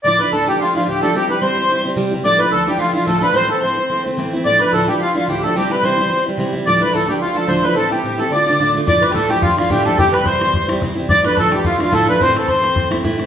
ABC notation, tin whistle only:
X:1
M:4/4
L:1/16
Q:"Swing" 1/4=217
K:Ddor
V:1 name="Tin whistle"
d'2 b2 a2 g2 f2 f2 g2 a2 | g2 b2 c'6 z6 | d'2 b2 a2 g2 f2 f2 a2 b2 | c'2 a2 c'6 z6 |
d'2 b2 a2 g2 f2 f2 g2 a2 | g2 b2 c'6 z6 | d'2 b2 a2 g2 f2 a2 c'2 b2 | a2 g4 a2 d'6 z2 |
d'3- d'/2 g/2 a2 g2 f2 f2 g2 a2 | g2 b2 c'6 z6 | d'2 b2 a2 g2 f2 f2 a2 b2 | c'2 a2 c'6 z6 |]